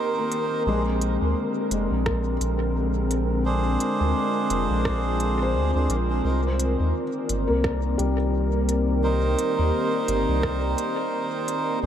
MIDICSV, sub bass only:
0, 0, Header, 1, 2, 480
1, 0, Start_track
1, 0, Key_signature, -3, "minor"
1, 0, Tempo, 697674
1, 459, Time_signature, 4, 2, 24, 8
1, 8160, End_track
2, 0, Start_track
2, 0, Title_t, "Sub bass"
2, 0, Program_c, 0, 38
2, 457, Note_on_c, 0, 34, 94
2, 812, Note_off_c, 0, 34, 0
2, 837, Note_on_c, 0, 38, 80
2, 926, Note_off_c, 0, 38, 0
2, 1176, Note_on_c, 0, 29, 79
2, 1301, Note_off_c, 0, 29, 0
2, 1315, Note_on_c, 0, 34, 83
2, 1638, Note_off_c, 0, 34, 0
2, 1655, Note_on_c, 0, 34, 97
2, 2598, Note_off_c, 0, 34, 0
2, 2757, Note_on_c, 0, 38, 80
2, 2846, Note_off_c, 0, 38, 0
2, 3096, Note_on_c, 0, 29, 81
2, 3221, Note_off_c, 0, 29, 0
2, 3235, Note_on_c, 0, 34, 81
2, 3816, Note_on_c, 0, 38, 89
2, 3827, Note_off_c, 0, 34, 0
2, 3941, Note_off_c, 0, 38, 0
2, 3959, Note_on_c, 0, 38, 85
2, 4047, Note_off_c, 0, 38, 0
2, 4056, Note_on_c, 0, 34, 82
2, 4274, Note_off_c, 0, 34, 0
2, 4296, Note_on_c, 0, 36, 97
2, 4651, Note_off_c, 0, 36, 0
2, 4677, Note_on_c, 0, 39, 75
2, 4766, Note_off_c, 0, 39, 0
2, 5017, Note_on_c, 0, 31, 78
2, 5142, Note_off_c, 0, 31, 0
2, 5157, Note_on_c, 0, 36, 86
2, 5478, Note_off_c, 0, 36, 0
2, 5496, Note_on_c, 0, 36, 99
2, 6438, Note_off_c, 0, 36, 0
2, 6597, Note_on_c, 0, 39, 80
2, 6686, Note_off_c, 0, 39, 0
2, 6937, Note_on_c, 0, 31, 81
2, 7062, Note_off_c, 0, 31, 0
2, 7077, Note_on_c, 0, 36, 86
2, 7399, Note_off_c, 0, 36, 0
2, 8139, Note_on_c, 0, 34, 93
2, 8160, Note_off_c, 0, 34, 0
2, 8160, End_track
0, 0, End_of_file